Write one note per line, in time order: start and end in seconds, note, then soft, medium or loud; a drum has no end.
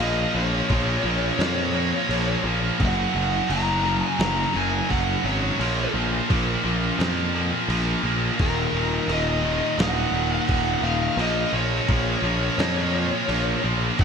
0.00 0.25 A#1 loud
0.00 0.32 A#2 medium
0.00 0.33 F3 medium
0.00 0.34 A#3 medium
0.00 0.33 D#5 loud
0.00 crash medium
0.33 0.60 A#1 medium
0.33 0.68 A#2 loud
0.33 0.69 F3 loud
0.33 0.71 A#3 loud
0.33 2.41 C#5 loud
0.70 0.96 A#1 loud
0.70 1.03 A#2 medium
0.70 1.03 F3 medium
0.70 1.05 A#3 loud
0.70 kick medium
0.70 crash medium
1.04 1.30 A#1 loud
1.04 1.37 A#2 loud
1.04 1.37 F3 loud
1.04 1.39 A#3 loud
1.38 1.91 F2 loud
1.38 1.72 A#2 loud
1.38 1.73 F3 loud
1.38 1.74 A#3 loud
1.38 snare loud
1.38 crash medium
1.73 2.07 A#2 loud
1.73 2.08 F3 loud
1.73 2.09 A#3 loud
2.08 2.35 A#1 medium
2.08 2.42 A#2 medium
2.08 2.42 F3 medium
2.08 2.44 A#3 loud
2.08 crash medium
2.43 2.70 A#1 medium
2.43 2.76 A#2 medium
2.43 2.77 F3 medium
2.43 5.59 A#3 medium
2.78 3.06 F#1 loud
2.78 3.11 F#2 medium
2.78 3.12 C#3 loud
2.78 3.13 F#3 loud
2.78 kick loud
2.78 crash medium
2.86 3.54 F#5 loud
3.12 3.40 F#1 medium
3.12 3.48 F#2 loud
3.12 3.48 C#3 loud
3.12 3.48 F#3 loud
3.49 4.01 F#1 loud
3.49 3.82 F#2 medium
3.49 3.82 C#3 loud
3.49 3.83 F#3 loud
3.49 4.04 A#5 loud
3.49 crash medium
3.84 4.17 F#2 medium
3.84 4.18 C#3 loud
3.84 4.18 F#3 loud
4.04 4.19 G#5 loud
4.18 4.45 F#1 loud
4.18 4.53 F#2 loud
4.18 4.53 C#3 loud
4.18 4.54 F#3 loud
4.18 4.56 A#5 loud
4.18 snare loud
4.18 crash medium
4.54 4.80 F#1 medium
4.54 4.88 F#2 medium
4.54 4.89 C#3 medium
4.54 4.90 F#3 loud
4.54 4.88 G#5 loud
4.89 5.16 F#1 medium
4.89 5.22 F#2 medium
4.89 5.23 C#3 medium
4.89 5.23 F#3 loud
4.89 5.25 F#5 medium
4.89 kick medium
4.89 crash medium
5.23 5.50 G#1 medium
5.23 5.56 F#2 medium
5.23 5.57 C#3 medium
5.23 5.57 F#3 loud
5.23 5.91 C#5 medium
5.58 5.85 A#1 medium
5.58 5.92 A#2 medium
5.58 5.93 F3 loud
5.58 5.94 A#3 medium
5.58 crash medium
5.93 6.20 A#1 medium
5.93 6.27 A#2 loud
5.93 6.28 F3 loud
5.93 6.29 A#3 loud
6.28 6.55 A#1 medium
6.28 6.62 A#2 medium
6.28 6.62 F3 medium
6.28 6.64 A#3 loud
6.28 kick loud
6.28 crash medium
6.63 6.90 A#1 medium
6.63 6.97 A#2 loud
6.63 6.97 F3 loud
6.63 6.99 A#3 loud
6.98 7.51 F2 medium
6.98 7.33 A#2 loud
6.98 7.34 F3 loud
6.98 7.35 A#3 loud
6.98 snare loud
6.98 crash medium
7.34 7.68 A#2 medium
7.34 7.69 F3 loud
7.34 7.70 A#3 medium
7.68 7.94 A#1 medium
7.68 8.03 A#2 medium
7.68 8.04 F3 medium
7.68 8.05 A#3 medium
7.68 crash medium
8.03 8.29 A#1 medium
8.03 8.37 A#2 medium
8.03 8.37 F3 medium
8.03 11.19 A#3 medium
8.39 8.65 D#1 medium
8.39 8.73 D#2 medium
8.39 8.73 A#2 medium
8.39 8.74 D#3 loud
8.39 9.12 A#4 loud
8.39 kick loud
8.39 crash medium
8.73 8.99 D#1 medium
8.73 9.08 D#2 loud
8.73 9.08 A#2 loud
8.73 9.09 D#3 loud
9.08 9.60 D#1 medium
9.08 9.41 D#2 loud
9.08 9.43 A#2 loud
9.08 9.43 D#3 loud
9.08 crash medium
9.12 9.76 D#5 loud
9.42 9.77 D#2 medium
9.42 9.77 A#2 loud
9.42 9.78 D#3 loud
9.78 10.04 D#1 medium
9.78 10.13 D#2 loud
9.78 10.13 A#2 loud
9.78 10.14 D#3 loud
9.78 10.28 F#5 loud
9.78 snare loud
9.78 crash medium
10.12 10.38 D#1 medium
10.12 10.48 D#2 medium
10.12 10.49 A#2 loud
10.12 10.49 D#3 loud
10.32 10.83 F#5 loud
10.49 10.75 D#1 medium
10.49 10.82 D#2 medium
10.49 10.83 A#2 medium
10.49 10.83 D#3 medium
10.49 kick loud
10.49 crash medium
10.82 11.08 D#1 medium
10.82 11.16 D#2 medium
10.82 11.16 A#2 medium
10.82 11.17 D#3 medium
10.82 11.16 F5 medium
11.17 11.44 A#1 loud
11.17 11.52 A#2 medium
11.17 11.53 F3 loud
11.17 11.53 A#3 medium
11.17 11.54 D#5 loud
11.17 crash medium
11.53 11.79 A#1 medium
11.53 11.87 A#2 loud
11.53 11.88 F3 loud
11.53 11.90 A#3 loud
11.53 13.60 C#5 medium
11.88 12.15 A#1 medium
11.88 12.22 A#2 loud
11.88 12.23 F3 loud
11.88 12.24 A#3 loud
11.88 kick medium
11.88 crash medium
12.22 12.49 A#1 loud
12.22 12.56 A#2 loud
12.22 12.57 F3 medium
12.22 12.59 A#3 loud
12.57 13.10 F2 loud
12.57 12.91 A#2 loud
12.57 12.91 F3 loud
12.57 12.92 A#3 loud
12.57 snare loud
12.57 crash medium
12.92 13.26 A#2 medium
12.92 13.27 F3 loud
12.92 13.28 A#3 loud
13.27 13.55 A#1 medium
13.27 13.62 A#2 medium
13.27 13.63 F3 medium
13.27 13.64 A#3 loud
13.27 crash medium
13.63 13.90 A#1 medium
13.63 13.96 A#2 medium
13.63 13.97 F3 medium
13.63 14.04 A#3 medium
13.98 14.04 F#1 medium
13.98 14.04 F#2 loud
13.98 14.04 C#3 medium
13.98 14.04 F#3 loud
13.98 14.04 F#5 loud
13.98 kick loud
13.98 crash medium